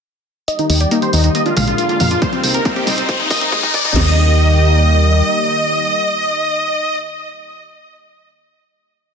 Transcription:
0.48 1.34 D#3 medium
0.48 1.34 G3 medium
0.48 3.92 A#3 medium
0.48 1.34 G4 medium
0.48 0.56 D#5 loud
0.48 closed hi-hat medium
0.48 riser medium
0.59 0.69 D#3 medium
0.59 0.67 D#4 medium
0.59 closed hi-hat soft
0.70 0.86 D#2 medium
0.70 0.78 D#4 medium
0.70 0.80 D#4 medium
0.70 open hi-hat loud
0.81 0.85 G4 medium
0.81 0.89 D5 medium
0.81 closed hi-hat soft
0.91 0.96 A#3 loud
0.91 1.00 D#4 medium
0.91 closed hi-hat medium
1.02 1.07 D#3 medium
1.02 1.11 C5 medium
1.02 closed hi-hat soft
1.13 1.29 D#2 loud
1.13 1.22 D#4 medium
1.13 open hi-hat medium
1.24 1.34 D#3 medium
1.24 1.32 D#4 medium
1.24 closed hi-hat medium
1.35 2.21 D3 medium
1.35 2.21 G#3 medium
1.35 1.45 A#3 medium
1.35 2.21 F4 medium
1.35 1.43 D#5 medium
1.35 closed hi-hat medium
1.46 1.50 D4 medium
1.46 1.54 F4 medium
1.46 closed hi-hat soft
1.57 1.73 A#1 medium
1.57 1.61 G#3 loud
1.57 1.65 F5 loud
1.57 open hi-hat loud
1.57 mid tom medium
1.68 1.72 D3 medium
1.68 1.76 F4 medium
1.68 closed hi-hat medium
1.78 1.87 F4 medium
1.78 closed hi-hat medium
1.89 2.00 D3 medium
1.89 1.98 F4 medium
1.89 closed hi-hat soft
2.00 2.16 F2 loud
2.00 2.10 A#3 medium
2.00 2.09 F5 medium
2.00 open hi-hat medium
2.00 mid tom medium
2.11 2.15 D4 medium
2.11 2.19 F4 medium
2.11 closed hi-hat medium
2.22 3.08 C3 medium
2.22 3.08 G3 medium
2.22 2.26 G3 loud
2.22 3.94 D#4 loud
2.22 2.30 C5 loud
2.22 kick loud
2.22 closed hi-hat medium
2.33 2.37 C3 medium
2.33 2.41 C4 medium
2.33 closed hi-hat soft
2.44 2.60 C2 loud
2.44 2.52 C4 medium
2.44 open hi-hat loud
2.54 2.65 C3 medium
2.54 2.63 A#4 medium
2.54 closed hi-hat medium
2.65 2.76 A#3 medium
2.65 2.74 C4 medium
2.65 kick loud
2.65 closed hi-hat medium
2.76 2.81 C4 medium
2.76 2.85 G4 medium
2.76 closed hi-hat soft
2.87 3.03 C2 medium
2.87 2.91 G3 loud
2.87 2.95 C4 medium
2.87 open hi-hat loud
2.87 mid tom medium
2.98 3.02 C3 medium
2.98 3.06 C4 medium
2.98 closed hi-hat medium
3.09 3.95 C3 medium
3.09 3.95 G#3 medium
3.09 3.17 C5 medium
3.09 kick loud
3.09 closed hi-hat medium
3.20 3.30 C3 medium
3.20 3.28 D#4 medium
3.20 closed hi-hat soft
3.31 3.47 G#1 medium
3.31 3.41 A#3 medium
3.31 3.39 D#5 medium
3.31 kick loud
3.31 open hi-hat loud
3.41 3.46 C4 medium
3.41 3.50 D#4 medium
3.41 closed hi-hat medium
3.52 3.57 G#3 loud
3.52 3.61 D#4 medium
3.52 kick loud
3.52 closed hi-hat medium
3.63 3.68 C3 medium
3.63 3.72 D#4 medium
3.63 kick medium
3.63 closed hi-hat soft
3.74 3.90 D#2 loud
3.74 3.83 D5 medium
3.74 kick loud
3.74 open hi-hat medium
3.85 3.95 C3 medium
3.85 3.93 D#4 medium
3.85 kick medium
3.85 closed hi-hat medium
3.96 5.22 D#2 loud
3.96 4.16 D#3 medium
3.96 6.95 D#3 medium
3.96 6.95 G3 medium
3.96 6.95 A#3 medium
3.96 6.95 G4 loud
3.96 6.96 D#5 loud
3.96 snare loud
3.96 crash medium

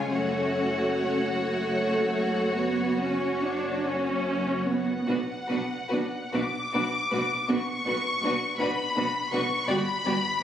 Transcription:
0.00 0.12 F4 soft
0.10 4.84 F#1 soft
0.10 4.84 F#2 soft
0.10 1.25 A3 soft
0.10 1.25 C#4 soft
0.10 4.87 F#4 soft
0.10 4.83 C#5 soft
0.10 3.85 F#5 medium
1.35 2.56 A3 soft
2.61 3.03 B3 soft
3.02 3.44 C#4 soft
3.44 3.85 D4 soft
3.85 4.68 C#4 soft
4.67 5.07 B3 soft
4.67 6.30 F#5 medium
5.08 5.17 B1 soft
5.08 5.16 B2 medium
5.08 5.16 B3 soft
5.08 5.16 D4 soft
5.08 5.16 F#4 soft
5.08 5.17 B4 soft
5.48 5.58 B1 soft
5.48 5.58 B2 soft
5.48 5.58 B3 soft
5.48 5.58 D4 soft
5.48 5.57 F#4 soft
5.48 5.56 B4 soft
5.89 6.00 B1 soft
5.89 6.00 B2 soft
5.89 6.00 B3 soft
5.89 6.00 D4 soft
5.89 5.97 F#4 soft
5.89 5.97 B4 soft
6.33 6.42 B1 medium
6.33 6.42 B2 soft
6.33 6.41 B3 soft
6.33 6.42 D4 soft
6.33 6.42 F#4 soft
6.33 6.42 B4 soft
6.33 7.48 D6 medium
6.74 6.83 B1 soft
6.74 6.82 B2 medium
6.74 6.82 B3 soft
6.74 6.82 D4 soft
6.74 6.82 F#4 soft
6.74 6.82 B4 soft
7.11 7.21 B1 soft
7.11 7.20 B2 soft
7.11 7.20 B3 soft
7.11 7.20 D4 soft
7.11 7.19 F#4 soft
7.11 7.20 B4 soft
7.48 7.58 B1 medium
7.48 7.56 B2 medium
7.48 7.56 B3 soft
7.48 7.56 D4 soft
7.48 7.57 F#4 soft
7.48 7.58 B4 soft
7.48 8.60 C#6 medium
7.86 7.94 B1 soft
7.86 7.94 B2 soft
7.86 7.94 B3 soft
7.86 7.94 D4 soft
7.86 7.96 F#4 soft
7.86 7.95 B4 soft
8.22 8.31 B1 soft
8.22 8.30 B2 medium
8.22 8.31 B3 soft
8.22 8.31 D4 soft
8.22 8.33 F#4 soft
8.22 8.33 B4 soft
8.58 8.68 B1 soft
8.58 8.67 B2 medium
8.58 8.67 B3 soft
8.58 8.67 D4 soft
8.58 8.68 F#4 medium
8.58 8.68 B4 medium
8.58 9.30 B5 medium
8.96 9.05 B1 soft
8.96 9.04 B2 soft
8.96 9.04 B3 soft
8.96 9.04 D4 soft
8.96 9.05 F#4 soft
8.96 9.04 B4 soft
9.30 9.41 B1 medium
9.30 9.40 B2 medium
9.30 9.41 B3 soft
9.30 9.41 D4 soft
9.30 9.40 F#4 soft
9.30 9.41 B4 soft
9.30 9.68 C#6 medium
9.66 9.77 G1 medium
9.66 9.77 G2 medium
9.66 9.77 B3 medium
9.66 9.77 F#4 soft
9.66 9.76 G4 medium
9.66 9.76 D5 medium
9.66 10.43 B5 medium
10.05 10.13 G1 medium
10.05 10.13 G2 soft
10.05 10.14 B3 soft
10.05 10.14 F#4 soft
10.05 10.13 G4 soft
10.05 10.13 D5 soft

